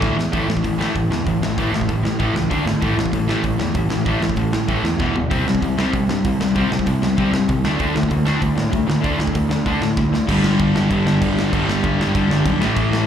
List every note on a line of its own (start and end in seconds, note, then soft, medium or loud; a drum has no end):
0.00 0.17 D2 medium
0.00 0.17 A2 medium
0.00 0.18 A2 medium
0.00 0.16 E3 medium
0.00 0.17 E3 medium
0.00 0.16 A3 medium
0.00 kick loud
0.00 snare medium
0.18 0.33 E2 medium
0.18 snare loud
0.32 0.43 A1 medium
0.32 0.47 A2 medium
0.32 0.47 E3 loud
0.32 0.48 A3 loud
0.32 kick loud
0.32 open hi-hat medium
0.48 0.58 A1 medium
0.48 0.61 A2 medium
0.48 0.62 E3 medium
0.48 snare loud
0.57 kick medium
0.63 0.83 A1 medium
0.63 0.77 A2 medium
0.63 0.77 E3 medium
0.63 kick medium
0.63 open hi-hat medium
0.78 0.94 A2 medium
0.78 0.94 E3 medium
0.78 0.94 A3 medium
0.78 snare loud
0.95 1.05 A1 medium
0.95 1.09 A2 medium
0.95 1.09 E3 medium
0.95 kick medium
0.95 open hi-hat soft
1.10 1.20 E2 medium
1.10 1.25 A2 medium
1.10 1.25 E3 medium
1.10 snare loud
1.26 1.36 A1 medium
1.26 1.40 A2 medium
1.26 1.40 E3 medium
1.26 kick loud
1.26 open hi-hat medium
1.42 1.51 A1 medium
1.42 1.56 A2 medium
1.42 1.56 E3 medium
1.42 snare loud
1.58 1.67 A1 medium
1.58 1.72 A2 loud
1.58 1.72 E3 medium
1.58 1.73 A3 loud
1.58 kick loud
1.58 open hi-hat medium
1.73 1.82 A1 medium
1.73 1.87 A2 medium
1.73 1.88 E3 medium
1.73 snare loud
1.81 kick medium
1.89 2.08 A1 loud
1.89 2.02 A2 medium
1.89 2.03 E3 medium
1.89 kick medium
1.89 open hi-hat medium
2.03 2.18 A2 medium
2.03 2.18 E3 medium
2.03 snare loud
2.19 2.29 A1 medium
2.19 2.34 A2 medium
2.19 2.34 E3 medium
2.19 2.34 A3 medium
2.19 kick loud
2.19 open hi-hat soft
2.35 2.45 C#2 medium
2.35 2.49 A2 medium
2.35 2.49 E3 medium
2.35 snare loud
2.50 2.60 D2 medium
2.50 2.64 D3 medium
2.50 2.64 A3 medium
2.50 2.65 D4 medium
2.50 kick loud
2.50 open hi-hat medium
2.66 2.75 G#1 medium
2.66 2.80 D3 medium
2.66 2.80 A3 medium
2.66 snare loud
2.81 2.92 A1 loud
2.81 2.96 A2 medium
2.81 2.96 E3 loud
2.81 2.96 A3 loud
2.81 kick loud
2.81 open hi-hat medium
2.97 3.07 A1 medium
2.97 3.10 A2 medium
2.97 3.11 E3 medium
2.97 snare loud
3.06 kick medium
3.12 3.32 A1 loud
3.12 3.26 A2 medium
3.12 3.26 E3 medium
3.12 kick medium
3.12 open hi-hat medium
3.27 3.41 A2 medium
3.27 3.41 E3 medium
3.27 3.43 A3 medium
3.27 snare loud
3.42 3.53 A1 medium
3.42 3.56 A2 medium
3.42 3.57 E3 medium
3.42 kick medium
3.42 open hi-hat medium
3.57 3.69 E2 medium
3.57 3.72 A2 medium
3.57 3.73 E3 medium
3.57 snare loud
3.73 3.85 A1 medium
3.73 3.88 A2 medium
3.73 3.89 E3 medium
3.73 kick loud
3.73 open hi-hat medium
3.89 4.00 A1 medium
3.89 4.04 A2 medium
3.89 4.04 E3 medium
3.89 snare loud
4.05 4.15 A1 medium
4.05 4.20 A2 medium
4.05 4.20 E3 loud
4.05 4.21 A3 loud
4.05 kick medium
4.05 open hi-hat medium
4.22 4.31 A1 medium
4.22 4.36 A2 medium
4.22 4.36 E3 medium
4.22 snare loud
4.30 kick medium
4.36 4.56 A1 loud
4.36 4.51 A2 medium
4.36 4.51 E3 medium
4.36 kick loud
4.36 open hi-hat medium
4.53 4.67 A2 medium
4.53 4.67 E3 medium
4.53 snare loud
4.68 4.78 A1 medium
4.68 4.83 A2 medium
4.68 4.83 E3 medium
4.68 4.84 A3 medium
4.68 kick medium
4.68 open hi-hat soft
4.83 4.93 E2 medium
4.83 4.98 A2 medium
4.83 4.98 E3 medium
4.83 snare loud
4.99 5.09 E1 medium
4.99 5.13 E2 medium
4.99 5.14 B2 medium
4.99 5.14 E3 medium
4.99 kick loud
4.99 snare medium
5.14 5.24 E1 medium
5.14 5.29 E2 medium
5.14 5.29 B2 medium
5.14 floor tom medium
5.30 5.40 C2 medium
5.30 5.45 C3 medium
5.30 5.45 G3 medium
5.30 5.45 C4 medium
5.30 kick loud
5.30 open hi-hat medium
5.47 5.56 C2 medium
5.47 5.60 C3 medium
5.47 5.61 G3 medium
5.47 snare loud
5.55 kick medium
5.62 5.81 C2 loud
5.62 5.76 C3 medium
5.62 5.77 G3 medium
5.62 kick medium
5.62 open hi-hat medium
5.78 5.92 C3 medium
5.78 5.93 G3 medium
5.78 5.93 C4 medium
5.78 snare loud
5.93 6.03 C2 medium
5.93 6.07 C3 medium
5.93 6.08 G3 medium
5.93 kick loud
5.93 open hi-hat soft
6.09 6.19 G2 medium
6.09 6.23 C3 medium
6.09 6.24 G3 medium
6.09 snare loud
6.25 6.34 C2 medium
6.25 6.39 C3 medium
6.25 6.39 G3 medium
6.25 kick loud
6.25 open hi-hat medium
6.40 6.49 C2 medium
6.40 6.54 C3 medium
6.40 6.54 G3 medium
6.40 snare loud
6.55 6.65 C2 medium
6.55 6.70 C3 medium
6.55 6.70 G3 loud
6.55 6.71 C4 loud
6.55 kick loud
6.55 open hi-hat medium
6.71 6.81 C2 medium
6.71 6.85 C3 medium
6.71 6.85 G3 medium
6.71 snare loud
6.79 kick medium
6.86 7.06 C2 loud
6.86 7.00 C3 medium
6.86 7.01 G3 medium
6.86 kick medium
6.86 open hi-hat medium
7.02 7.16 C3 medium
7.02 7.16 G3 medium
7.02 snare loud
7.18 7.27 C2 medium
7.18 7.32 C3 medium
7.18 7.32 G3 medium
7.18 7.32 C4 medium
7.18 kick loud
7.18 open hi-hat soft
7.33 7.42 G2 medium
7.33 7.47 C3 medium
7.33 7.47 G3 medium
7.33 snare loud
7.49 7.58 C2 medium
7.49 7.63 C3 medium
7.49 7.63 G3 medium
7.49 kick loud
7.49 open hi-hat medium
7.64 7.74 D2 medium
7.64 7.78 D3 medium
7.64 7.79 A3 medium
7.64 7.78 D4 loud
7.64 snare loud
7.79 7.89 D2 medium
7.79 7.94 D3 medium
7.79 7.94 A3 loud
7.79 7.94 D4 loud
7.79 kick loud
7.79 open hi-hat medium
7.95 8.05 D2 medium
7.95 8.07 D3 medium
7.95 8.07 A3 medium
7.95 snare loud
8.03 kick medium
8.08 8.30 D2 loud
8.08 8.24 D3 medium
8.08 8.23 A3 medium
8.08 kick medium
8.08 open hi-hat medium
8.25 8.40 D3 loud
8.25 8.40 A3 loud
8.25 8.40 D4 loud
8.25 snare loud
8.42 8.51 D2 loud
8.42 8.56 D3 medium
8.42 8.56 A3 medium
8.42 kick loud
8.42 open hi-hat medium
8.57 8.67 A2 medium
8.57 8.70 D3 medium
8.57 8.71 A3 medium
8.57 snare loud
8.72 8.82 D2 medium
8.72 8.86 D3 medium
8.72 8.86 A3 medium
8.72 kick loud
8.72 open hi-hat medium
8.87 8.98 D2 medium
8.87 9.02 D3 medium
8.87 9.02 A3 medium
8.87 snare loud
9.03 9.13 D2 loud
9.03 9.18 D3 medium
9.03 9.18 A3 medium
9.03 9.19 D4 loud
9.03 kick loud
9.03 open hi-hat medium
9.19 9.29 D2 medium
9.19 9.33 D3 medium
9.19 9.33 A3 medium
9.19 snare loud
9.27 kick medium
9.34 9.54 D2 loud
9.34 9.48 D3 medium
9.34 9.49 A3 medium
9.34 kick loud
9.34 open hi-hat medium
9.51 9.64 D3 medium
9.51 9.65 A3 medium
9.51 snare loud
9.66 9.75 D2 medium
9.66 9.81 D3 medium
9.66 9.81 A3 medium
9.66 9.81 D4 medium
9.66 kick medium
9.66 open hi-hat medium
9.81 9.90 A2 medium
9.81 9.96 D3 medium
9.81 9.96 A3 medium
9.81 snare loud
9.97 10.07 D2 medium
9.97 10.11 D3 medium
9.97 10.11 A3 medium
9.97 kick loud
9.97 snare medium
10.12 10.21 D2 medium
10.12 10.27 D3 medium
10.12 10.27 A3 medium
10.12 snare loud
10.28 10.58 G1 medium
10.28 10.74 G2 medium
10.28 10.74 D3 loud
10.28 10.73 G3 loud
10.28 kick loud
10.28 crash loud
10.28 crash medium
10.44 snare loud
10.59 10.74 G1 loud
10.59 kick loud
10.59 crash medium
10.74 10.90 G1 loud
10.74 11.20 G2 medium
10.74 11.21 D3 medium
10.74 11.20 G3 medium
10.74 snare loud
10.89 11.05 G1 medium
10.89 11.50 G2 medium
10.89 11.52 D3 medium
10.89 11.52 G3 loud
10.89 kick loud
10.89 crash medium
11.05 11.20 G1 medium
11.05 snare loud
11.21 11.51 G1 medium
11.21 11.50 G2 medium
11.21 11.52 D3 medium
11.21 11.52 G3 medium
11.21 kick loud
11.21 crash medium
11.39 snare loud
11.52 11.66 G1 loud
11.52 11.98 G2 loud
11.52 11.98 D3 loud
11.52 11.97 G3 loud
11.52 kick loud
11.52 crash medium
11.67 11.82 G1 medium
11.67 snare loud
11.84 11.97 G2 loud
11.84 kick loud
11.84 crash medium
11.98 12.13 G1 medium
11.98 12.44 G2 medium
11.98 12.44 D3 loud
11.98 12.44 G3 medium
11.98 snare loud
12.13 12.59 G2 medium
12.13 12.28 G2 medium
12.13 12.59 D3 medium
12.13 12.60 G3 medium
12.13 kick loud
12.13 crash medium
12.29 12.44 G1 medium
12.29 snare loud
12.45 12.59 B1 medium
12.45 12.60 G2 medium
12.45 12.60 D3 medium
12.45 12.61 G3 medium
12.45 kick loud
12.45 crash medium
12.59 12.75 A1 loud
12.59 13.07 A2 loud
12.59 13.07 E3 loud
12.59 13.07 A3 loud
12.59 snare loud
12.76 13.06 A1 medium
12.76 kick loud
12.76 crash medium
12.93 snare loud